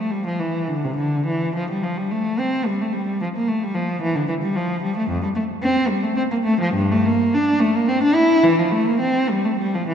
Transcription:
0, 0, Header, 1, 2, 480
1, 0, Start_track
1, 0, Key_signature, -1, "major"
1, 0, Tempo, 567644
1, 101, Time_signature, 3, 2, 24, 8
1, 2019, Tempo, 539084
1, 5379, Tempo, 586510
1, 6339, Tempo, 552995
1, 7299, Tempo, 576369
1, 8549, End_track
2, 0, Start_track
2, 0, Title_t, "Cello"
2, 0, Program_c, 0, 42
2, 0, Note_on_c, 0, 57, 57
2, 92, Note_on_c, 0, 55, 66
2, 102, Note_off_c, 0, 57, 0
2, 218, Note_off_c, 0, 55, 0
2, 226, Note_on_c, 0, 53, 55
2, 335, Note_on_c, 0, 52, 52
2, 343, Note_off_c, 0, 53, 0
2, 578, Note_on_c, 0, 50, 59
2, 583, Note_off_c, 0, 52, 0
2, 704, Note_off_c, 0, 50, 0
2, 713, Note_on_c, 0, 48, 59
2, 819, Note_on_c, 0, 50, 60
2, 833, Note_off_c, 0, 48, 0
2, 1062, Note_off_c, 0, 50, 0
2, 1065, Note_on_c, 0, 52, 54
2, 1305, Note_off_c, 0, 52, 0
2, 1315, Note_on_c, 0, 53, 61
2, 1431, Note_off_c, 0, 53, 0
2, 1438, Note_on_c, 0, 55, 55
2, 1547, Note_on_c, 0, 53, 60
2, 1551, Note_off_c, 0, 55, 0
2, 1666, Note_off_c, 0, 53, 0
2, 1669, Note_on_c, 0, 55, 58
2, 1783, Note_on_c, 0, 57, 59
2, 1786, Note_off_c, 0, 55, 0
2, 2019, Note_off_c, 0, 57, 0
2, 2023, Note_on_c, 0, 60, 66
2, 2263, Note_on_c, 0, 55, 63
2, 2266, Note_off_c, 0, 60, 0
2, 2385, Note_off_c, 0, 55, 0
2, 2395, Note_on_c, 0, 57, 53
2, 2505, Note_on_c, 0, 55, 57
2, 2512, Note_off_c, 0, 57, 0
2, 2750, Note_off_c, 0, 55, 0
2, 2757, Note_on_c, 0, 53, 59
2, 2805, Note_off_c, 0, 53, 0
2, 2883, Note_on_c, 0, 58, 58
2, 2992, Note_on_c, 0, 57, 57
2, 2997, Note_off_c, 0, 58, 0
2, 3115, Note_off_c, 0, 57, 0
2, 3128, Note_on_c, 0, 55, 63
2, 3226, Note_on_c, 0, 53, 66
2, 3243, Note_off_c, 0, 55, 0
2, 3471, Note_off_c, 0, 53, 0
2, 3471, Note_on_c, 0, 52, 76
2, 3590, Note_off_c, 0, 52, 0
2, 3590, Note_on_c, 0, 50, 68
2, 3704, Note_on_c, 0, 52, 69
2, 3712, Note_off_c, 0, 50, 0
2, 3754, Note_off_c, 0, 52, 0
2, 3829, Note_on_c, 0, 55, 66
2, 3949, Note_off_c, 0, 55, 0
2, 3950, Note_on_c, 0, 53, 62
2, 4190, Note_on_c, 0, 55, 68
2, 4191, Note_off_c, 0, 53, 0
2, 4308, Note_off_c, 0, 55, 0
2, 4316, Note_on_c, 0, 57, 65
2, 4429, Note_off_c, 0, 57, 0
2, 4433, Note_on_c, 0, 41, 70
2, 4546, Note_off_c, 0, 41, 0
2, 4556, Note_on_c, 0, 55, 61
2, 4601, Note_off_c, 0, 55, 0
2, 4658, Note_on_c, 0, 57, 64
2, 4729, Note_off_c, 0, 57, 0
2, 4902, Note_on_c, 0, 60, 84
2, 5128, Note_on_c, 0, 55, 75
2, 5135, Note_off_c, 0, 60, 0
2, 5253, Note_off_c, 0, 55, 0
2, 5262, Note_on_c, 0, 57, 63
2, 5380, Note_off_c, 0, 57, 0
2, 5382, Note_on_c, 0, 60, 76
2, 5427, Note_off_c, 0, 60, 0
2, 5505, Note_on_c, 0, 58, 65
2, 5549, Note_off_c, 0, 58, 0
2, 5606, Note_on_c, 0, 57, 82
2, 5726, Note_off_c, 0, 57, 0
2, 5741, Note_on_c, 0, 53, 69
2, 5855, Note_on_c, 0, 43, 83
2, 5859, Note_off_c, 0, 53, 0
2, 5979, Note_off_c, 0, 43, 0
2, 5992, Note_on_c, 0, 57, 73
2, 6105, Note_on_c, 0, 58, 76
2, 6109, Note_off_c, 0, 57, 0
2, 6339, Note_off_c, 0, 58, 0
2, 6344, Note_on_c, 0, 62, 78
2, 6571, Note_on_c, 0, 57, 75
2, 6581, Note_off_c, 0, 62, 0
2, 6693, Note_off_c, 0, 57, 0
2, 6702, Note_on_c, 0, 58, 67
2, 6814, Note_on_c, 0, 60, 77
2, 6818, Note_off_c, 0, 58, 0
2, 6934, Note_off_c, 0, 60, 0
2, 6943, Note_on_c, 0, 62, 80
2, 7042, Note_on_c, 0, 64, 83
2, 7057, Note_off_c, 0, 62, 0
2, 7293, Note_off_c, 0, 64, 0
2, 7294, Note_on_c, 0, 52, 82
2, 7414, Note_off_c, 0, 52, 0
2, 7423, Note_on_c, 0, 53, 66
2, 7526, Note_on_c, 0, 57, 76
2, 7537, Note_off_c, 0, 53, 0
2, 7648, Note_off_c, 0, 57, 0
2, 7656, Note_on_c, 0, 58, 76
2, 7766, Note_on_c, 0, 60, 77
2, 7773, Note_off_c, 0, 58, 0
2, 8002, Note_off_c, 0, 60, 0
2, 8008, Note_on_c, 0, 55, 76
2, 8129, Note_off_c, 0, 55, 0
2, 8134, Note_on_c, 0, 57, 61
2, 8248, Note_on_c, 0, 55, 67
2, 8253, Note_off_c, 0, 57, 0
2, 8370, Note_off_c, 0, 55, 0
2, 8388, Note_on_c, 0, 53, 62
2, 8497, Note_on_c, 0, 52, 63
2, 8505, Note_off_c, 0, 53, 0
2, 8549, Note_off_c, 0, 52, 0
2, 8549, End_track
0, 0, End_of_file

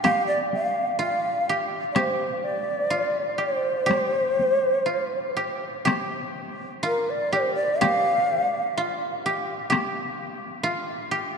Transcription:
0, 0, Header, 1, 4, 480
1, 0, Start_track
1, 0, Tempo, 960000
1, 14, Time_signature, 2, 2, 24, 8
1, 1454, Tempo, 980392
1, 3854, Tempo, 949367
1, 5657, End_track
2, 0, Start_track
2, 0, Title_t, "Shakuhachi"
2, 0, Program_c, 0, 77
2, 15, Note_on_c, 0, 77, 79
2, 128, Note_off_c, 0, 77, 0
2, 136, Note_on_c, 0, 74, 76
2, 249, Note_off_c, 0, 74, 0
2, 268, Note_on_c, 0, 77, 76
2, 488, Note_off_c, 0, 77, 0
2, 507, Note_on_c, 0, 77, 78
2, 841, Note_off_c, 0, 77, 0
2, 960, Note_on_c, 0, 74, 54
2, 980, Note_on_c, 0, 72, 79
2, 988, Note_off_c, 0, 74, 0
2, 1220, Note_on_c, 0, 74, 78
2, 1227, Note_off_c, 0, 72, 0
2, 1694, Note_on_c, 0, 72, 70
2, 1701, Note_off_c, 0, 74, 0
2, 2658, Note_off_c, 0, 72, 0
2, 3386, Note_on_c, 0, 70, 68
2, 3506, Note_on_c, 0, 74, 74
2, 3514, Note_off_c, 0, 70, 0
2, 3616, Note_on_c, 0, 72, 78
2, 3623, Note_off_c, 0, 74, 0
2, 3724, Note_off_c, 0, 72, 0
2, 3727, Note_on_c, 0, 74, 79
2, 3844, Note_on_c, 0, 77, 93
2, 3852, Note_off_c, 0, 74, 0
2, 4335, Note_off_c, 0, 77, 0
2, 5657, End_track
3, 0, Start_track
3, 0, Title_t, "Koto"
3, 0, Program_c, 1, 107
3, 0, Note_on_c, 1, 65, 62
3, 20, Note_on_c, 1, 67, 71
3, 492, Note_off_c, 1, 65, 0
3, 494, Note_on_c, 1, 65, 63
3, 745, Note_off_c, 1, 67, 0
3, 747, Note_on_c, 1, 67, 64
3, 976, Note_off_c, 1, 67, 0
3, 978, Note_on_c, 1, 67, 75
3, 1450, Note_off_c, 1, 65, 0
3, 1452, Note_on_c, 1, 65, 64
3, 1683, Note_off_c, 1, 67, 0
3, 1685, Note_on_c, 1, 67, 61
3, 1919, Note_off_c, 1, 67, 0
3, 1921, Note_on_c, 1, 67, 75
3, 2407, Note_off_c, 1, 65, 0
3, 2409, Note_on_c, 1, 65, 56
3, 2656, Note_off_c, 1, 67, 0
3, 2657, Note_on_c, 1, 67, 61
3, 2893, Note_off_c, 1, 67, 0
3, 2895, Note_on_c, 1, 67, 77
3, 3372, Note_off_c, 1, 65, 0
3, 3374, Note_on_c, 1, 65, 71
3, 3615, Note_off_c, 1, 67, 0
3, 3617, Note_on_c, 1, 67, 71
3, 3853, Note_off_c, 1, 67, 0
3, 3855, Note_on_c, 1, 67, 78
3, 4340, Note_off_c, 1, 65, 0
3, 4342, Note_on_c, 1, 65, 70
3, 4584, Note_off_c, 1, 67, 0
3, 4586, Note_on_c, 1, 67, 68
3, 4807, Note_off_c, 1, 67, 0
3, 4809, Note_on_c, 1, 67, 82
3, 5280, Note_off_c, 1, 65, 0
3, 5282, Note_on_c, 1, 65, 75
3, 5522, Note_off_c, 1, 67, 0
3, 5524, Note_on_c, 1, 67, 68
3, 5657, Note_off_c, 1, 65, 0
3, 5657, Note_off_c, 1, 67, 0
3, 5657, End_track
4, 0, Start_track
4, 0, Title_t, "Taiko and cinematic ensemble drums"
4, 23, Note_on_c, 9, 37, 46
4, 23, Note_on_c, 9, 48, 48
4, 73, Note_off_c, 9, 37, 0
4, 73, Note_off_c, 9, 48, 0
4, 265, Note_on_c, 9, 48, 33
4, 315, Note_off_c, 9, 48, 0
4, 980, Note_on_c, 9, 37, 45
4, 980, Note_on_c, 9, 48, 46
4, 1030, Note_off_c, 9, 37, 0
4, 1030, Note_off_c, 9, 48, 0
4, 1943, Note_on_c, 9, 37, 39
4, 1943, Note_on_c, 9, 48, 42
4, 1992, Note_off_c, 9, 37, 0
4, 1992, Note_off_c, 9, 48, 0
4, 2182, Note_on_c, 9, 48, 33
4, 2231, Note_off_c, 9, 48, 0
4, 2905, Note_on_c, 9, 37, 57
4, 2905, Note_on_c, 9, 48, 54
4, 2954, Note_off_c, 9, 37, 0
4, 2954, Note_off_c, 9, 48, 0
4, 3857, Note_on_c, 9, 37, 48
4, 3857, Note_on_c, 9, 48, 51
4, 3908, Note_off_c, 9, 37, 0
4, 3908, Note_off_c, 9, 48, 0
4, 4821, Note_on_c, 9, 37, 54
4, 4821, Note_on_c, 9, 48, 54
4, 4872, Note_off_c, 9, 37, 0
4, 4872, Note_off_c, 9, 48, 0
4, 5657, End_track
0, 0, End_of_file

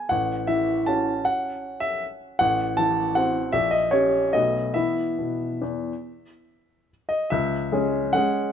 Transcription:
0, 0, Header, 1, 2, 480
1, 0, Start_track
1, 0, Tempo, 380228
1, 146, Time_signature, 3, 2, 24, 8
1, 4950, Tempo, 424028
1, 8310, Tempo, 412371
1, 10209, End_track
2, 0, Start_track
2, 0, Title_t, "Grand piano"
2, 0, Program_c, 0, 0
2, 0, Note_on_c, 0, 80, 64
2, 117, Note_on_c, 0, 78, 69
2, 136, Note_off_c, 0, 80, 0
2, 137, Note_on_c, 0, 33, 50
2, 375, Control_c, 0, 64, 127
2, 598, Note_on_c, 0, 76, 63
2, 608, Note_off_c, 0, 78, 0
2, 610, Note_on_c, 0, 52, 40
2, 1090, Note_on_c, 0, 81, 72
2, 1101, Note_off_c, 0, 76, 0
2, 1106, Note_on_c, 0, 61, 35
2, 1112, Note_on_c, 0, 66, 39
2, 1132, Control_c, 0, 64, 0
2, 1398, Note_off_c, 0, 52, 0
2, 1543, Note_off_c, 0, 33, 0
2, 1576, Note_on_c, 0, 78, 69
2, 1580, Note_off_c, 0, 81, 0
2, 1849, Control_c, 0, 64, 127
2, 2277, Note_on_c, 0, 76, 75
2, 2298, Note_off_c, 0, 78, 0
2, 2534, Note_off_c, 0, 76, 0
2, 2559, Control_c, 0, 64, 0
2, 2975, Note_off_c, 0, 61, 0
2, 2978, Note_off_c, 0, 66, 0
2, 3017, Note_on_c, 0, 78, 86
2, 3034, Note_on_c, 0, 33, 55
2, 3231, Control_c, 0, 64, 127
2, 3496, Note_on_c, 0, 81, 81
2, 3500, Note_off_c, 0, 78, 0
2, 3516, Note_on_c, 0, 52, 44
2, 3976, Note_off_c, 0, 81, 0
2, 3979, Note_on_c, 0, 78, 76
2, 3998, Note_on_c, 0, 60, 42
2, 3998, Note_on_c, 0, 66, 39
2, 4000, Control_c, 0, 64, 0
2, 4278, Note_off_c, 0, 52, 0
2, 4424, Note_off_c, 0, 33, 0
2, 4425, Note_off_c, 0, 60, 0
2, 4426, Note_off_c, 0, 66, 0
2, 4450, Note_on_c, 0, 76, 78
2, 4463, Note_off_c, 0, 78, 0
2, 4463, Note_on_c, 0, 34, 51
2, 4681, Note_on_c, 0, 75, 65
2, 4698, Note_off_c, 0, 76, 0
2, 4722, Control_c, 0, 64, 127
2, 4937, Note_on_c, 0, 73, 65
2, 4939, Note_off_c, 0, 75, 0
2, 4955, Note_on_c, 0, 61, 38
2, 4960, Note_on_c, 0, 67, 41
2, 5370, Note_off_c, 0, 61, 0
2, 5373, Note_off_c, 0, 67, 0
2, 5386, Note_off_c, 0, 34, 0
2, 5407, Note_off_c, 0, 73, 0
2, 5411, Note_on_c, 0, 75, 67
2, 5424, Note_on_c, 0, 59, 34
2, 5425, Note_on_c, 0, 35, 46
2, 5427, Note_on_c, 0, 66, 34
2, 5428, Note_on_c, 0, 57, 31
2, 5429, Control_c, 0, 64, 0
2, 5653, Control_c, 0, 64, 127
2, 5850, Note_off_c, 0, 57, 0
2, 5853, Note_off_c, 0, 59, 0
2, 5854, Note_off_c, 0, 66, 0
2, 5876, Note_on_c, 0, 76, 63
2, 5879, Note_off_c, 0, 35, 0
2, 5887, Note_off_c, 0, 75, 0
2, 5890, Note_on_c, 0, 64, 33
2, 5893, Note_on_c, 0, 52, 35
2, 5894, Note_on_c, 0, 59, 31
2, 5898, Control_c, 0, 64, 0
2, 6113, Control_c, 0, 64, 127
2, 6229, Note_off_c, 0, 52, 0
2, 6276, Note_off_c, 0, 64, 0
2, 6278, Note_off_c, 0, 59, 0
2, 6381, Note_on_c, 0, 47, 36
2, 6724, Note_off_c, 0, 47, 0
2, 6869, Note_on_c, 0, 40, 38
2, 6879, Control_c, 0, 64, 0
2, 7206, Note_off_c, 0, 40, 0
2, 7578, Control_c, 0, 64, 127
2, 8305, Note_off_c, 0, 76, 0
2, 8320, Control_c, 0, 64, 0
2, 8539, Note_on_c, 0, 75, 59
2, 8788, Note_off_c, 0, 75, 0
2, 8791, Note_on_c, 0, 76, 66
2, 8809, Note_on_c, 0, 37, 57
2, 9047, Control_c, 0, 64, 127
2, 9265, Note_off_c, 0, 37, 0
2, 9279, Note_on_c, 0, 56, 46
2, 9288, Note_on_c, 0, 61, 46
2, 9291, Note_on_c, 0, 68, 44
2, 9717, Note_off_c, 0, 56, 0
2, 9721, Note_off_c, 0, 61, 0
2, 9723, Note_off_c, 0, 68, 0
2, 9751, Note_on_c, 0, 78, 82
2, 9758, Note_off_c, 0, 76, 0
2, 9768, Note_on_c, 0, 56, 44
2, 9770, Note_on_c, 0, 61, 39
2, 9777, Control_c, 0, 64, 0
2, 9778, Note_on_c, 0, 68, 47
2, 10187, Note_off_c, 0, 56, 0
2, 10188, Note_off_c, 0, 61, 0
2, 10192, Note_off_c, 0, 68, 0
2, 10209, Note_off_c, 0, 78, 0
2, 10209, End_track
0, 0, End_of_file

